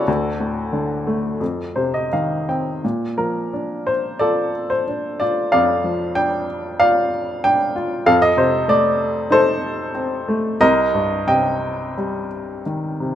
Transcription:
Already playing: F#4 A4 D5
0.08 D2
0.40 A2
0.73 D3
1.07 A3
1.40 F2
1.76 C3 C5
1.94 D#5
2.13 D#3 F5
2.49 C4 G5
2.84 A#2
3.18 F3 A#4
3.53 D4
3.87 C5
4.19 F4 A4 D5
4.70 C5
4.88 D4
5.20 F4 D5
5.52 F2 D5 F5
5.84 F3
6.15 D4 G5
6.80 F4 D5 F5
7.44 D4 G5
7.76 F4
8.06 F2 A4 F5
8.22 D#5
8.37 C3 C5
8.68 A3 D5
9.31 D#4 A4 C5
9.95 C4
10.28 A3
10.61 C2 A#4 D#5
10.94 G2
11.27 C3 D#5 G5
11.97 G3
12.66 D#3
13.00 C3

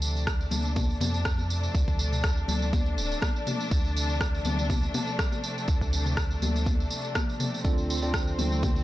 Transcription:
Already playing: D2 C3 F3 A3 D4
0.02 tambourine
0.17 tambourine
0.27 kick, cross-stick, tambourine
0.41 tambourine
0.51 D2, tambourine, high conga, low conga
0.65 tambourine
0.76 kick, mid tom, tambourine, high conga
0.90 tambourine
1.01 F2, mid tom, tambourine, high conga
1.14 tambourine
1.25 kick, cross-stick, tambourine
1.38 tambourine, high conga
1.50 tambourine
1.63 tambourine
1.75 D2, kick, tambourine
1.88 kick, tambourine
1.99 tambourine
2.12 mid tom, tambourine
2.24 kick, cross-stick, tambourine
2.37 tambourine
2.48 D2, tambourine, high conga, low conga
2.62 tambourine
2.73 kick, tambourine, high conga
2.86 tambourine
2.97 D1, tambourine
3.12 tambourine
3.22 kick, cross-stick, tambourine, high conga
3.36 tambourine
3.47 mid tom, tambourine, high conga
3.60 tambourine
3.71 D2, kick, tambourine
3.85 tambourine
3.96 tambourine
4.09 tambourine
4.21 kick, cross-stick, tambourine
4.34 tambourine
4.45 D2, tambourine, high conga, low conga
4.59 tambourine
4.70 kick, mid tom, tambourine, high conga
4.83 tambourine
4.94 mid tom, tambourine, high conga
5.07 tambourine
5.19 kick, cross-stick, tambourine
5.32 tambourine, high conga
5.44 tambourine
5.58 tambourine
5.68 D2, kick, tambourine
5.81 kick, tambourine
5.93 tambourine
6.06 mid tom, tambourine
6.17 kick, cross-stick, tambourine
6.31 tambourine
6.42 D2, tambourine, high conga, low conga
6.56 tambourine
6.66 kick, tambourine, high conga
6.80 tambourine
6.90 tambourine
7.04 tambourine
7.15 kick, cross-stick, tambourine, high conga
7.29 tambourine
7.40 mid tom, tambourine, high conga
7.54 tambourine
7.64 D2 C4 D4 F4 A4 D5, kick, tambourine
7.78 tambourine
7.90 tambourine
8.02 C4 D4 F4 A4 D5, tambourine
8.14 kick, cross-stick, tambourine
8.27 tambourine
8.38 D2, tambourine, high conga, low conga
8.52 tambourine
8.63 kick, mid tom, tambourine, high conga
8.76 tambourine

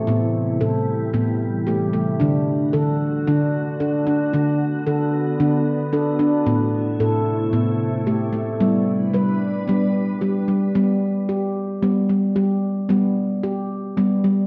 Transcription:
Already playing: C3 E3
0.07 A2 G3 B3
0.61 A2 A4
1.13 A2 B3
1.67 A3 G4
1.93 A3
2.20 D3 A3 D4 F#4
2.73 D3 A4
3.27 D3 D4
3.80 D4 A4
4.07 D4
4.33 D3 B3 D4
4.87 D3 A4
5.40 D3 D4
5.93 D4 A4
6.19 D4
6.46 A2 C3 A3 B3 E4
7.00 A2 A4
7.53 A2 B3
8.07 A3 G4
8.33 A3
8.60 G3 B3 D4 B4
9.14 G3 B4
9.68 G3 B3
10.21 G3 G4
10.48 G3
10.75 G3 B3
11.29 G4
11.82 G3 B3
12.09 G3
12.36 G3 G4
12.89 G3 B3
13.43 G4
13.97 G3 B3
14.24 G3

